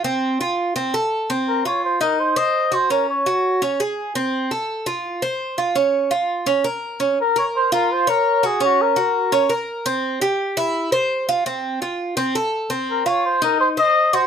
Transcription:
<<
  \new Staff \with { instrumentName = "Muted trumpet" } { \time 4/4 \key bes \minor \tempo 4 = 168 r1 | bes'8 des''8 c''8 bes'8 c''8 ees''4 c''8 | bes'8 des''2 r4. | r1 |
r1 | bes'8 des''8 c''8 bes'8 c''8 bes'4 aes'8 | ges'8 bes'2 r4. | r1 |
r1 | bes'8 des''8 c''8 bes'8 c''8 ees''4 c''8 | }
  \new Staff \with { instrumentName = "Cuban tres" } { \time 4/4 \key bes \minor c'4 f'4 c'8 a'4 c'8~ | c'8 f'4 ees'4 c''4 ges'8 | des'4 ges'4 des'8 aes'4 c'8~ | c'8 a'4 f'4 c''4 f'8 |
des'4 f'4 des'8 bes'4 des'8 | r8 bes'4 f'4 des''4 ges'8 | des'4 ges'4 des'8 bes'4 c'8~ | c'8 g'4 e'4 c''4 f'8 |
c'4 f'4 c'8 a'4 c'8~ | c'8 f'4 ees'4 c''4 ges'8 | }
>>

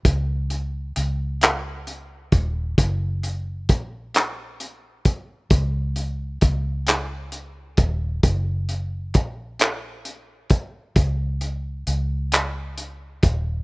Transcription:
<<
  \new Staff \with { instrumentName = "Fingered electric bass" } { \clef bass \time 6/8 \key ges \major \tempo 4. = 44 des,4 des,4. ees,,8 | ges,,4 bes,,4. c,8 | des,4 des,4. ees,,8 | ges,,4 bes,,4. c,8 |
des,4 des,4. ees,,8 | }
  \new DrumStaff \with { instrumentName = "Drums" } \drummode { \time 6/8 <hh bd>8 hh8 hh8 <hc hh>8 hh8 <hh bd>8 | <hh bd>8 hh8 <hh bd>8 <hc hh>8 hh8 <hh bd>8 | <hh bd>8 hh8 <hh bd>8 <hc hh>8 hh8 <hh bd>8 | <hh bd>8 hh8 <hh bd>8 <hc hh>8 hh8 <hh bd>8 |
<hh bd>8 hh8 hh8 <hc hh>8 hh8 <hh bd>8 | }
>>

